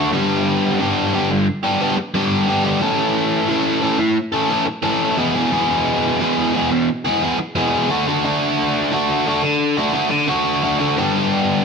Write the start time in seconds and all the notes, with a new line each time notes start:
Already playing: A3
0.13 G2 D3 G3 B3 D4 G4
0.80 G2 D3 G3 B3 D4 G4
1.14 G3 B3 D4 G4
1.31 muted overdriven electric guitar stroke
1.64 G3 B3 D4 G4
1.81 G3 B3 D4 G4
1.97 muted overdriven electric guitar stroke
2.14 G2 D3 G3 B3 D4 G4
2.48 G3 B3 D4 G4
2.65 G3 B3 D4 G4
2.81 A2 E3 A3 C#4 A4
3.48 A2 E3 A3 C#4 A4
3.82 E3 A3 C#4 A4
3.99 muted overdriven electric guitar stroke
4.32 A3 C#4 A4
4.49 E3 A3 C#4 A4
4.66 muted overdriven electric guitar stroke
4.83 A2 E3 A3 C#4 A4
5.17 E2 B2 E3 G#3 B3 G#4
5.34 E3 G#3 B3 G#4
5.51 E2 B2 E3 G#3 B3 G#4
6.20 E2 B2 E3 G#3 B3 G#4
6.54 E3 G#3 B3 G#4
6.72 muted overdriven electric guitar stroke
7.05 E3 G#3 B3 G#4
7.22 E3 G#3 B3 G#4
7.39 muted overdriven electric guitar stroke
7.55 E2 B2 E3 G#3 B3 G#4
7.89 D3 A3 D4 F#4
8.07 A3 D4 F#4
8.24 D3 A3 D4 F#4
8.91 D3 A3 D4 F#4
9.26 D3 A3 D4 F#4
9.43 muted overdriven electric guitar stroke
9.77 A3 D4 F#4
9.93 D3 A3 D4 F#4
10.10 muted overdriven electric guitar stroke
10.28 D3 A3 D4 F#4
10.63 D3 A3 D4 F#4
10.79 A3 D4 F#4
10.96 G2 D3 G3 B3 D4 G4